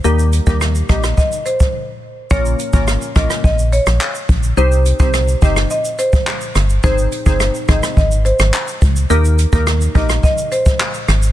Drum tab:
HH |--x---x---x-----|--x---x---x---x-|--x---x---x---x-|--x---x---x---x-|
SH |xxxxxxxxxxxx----|xxxxxxxxxxxxxxxx|xxxxxxxxxxxxxxxx|xxxxxxxxxxxxxxxx|
CP |----------------|------------x---|------------x---|------------x---|
SD |----r-rr--------|----r-rr---r----|----r--r----r-r-|----r-rr---r----|
BD |---o--o-o--o----|o--o--o-o-----o-|---o--o----o----|o--o--o-o-----o-|

HH |--x---x---x---x-|
SH |xxxxxxxxxxxxxxxx|
CP |------------x---|
SD |----r--r----r-r-|
BD |---o--o-o--o----|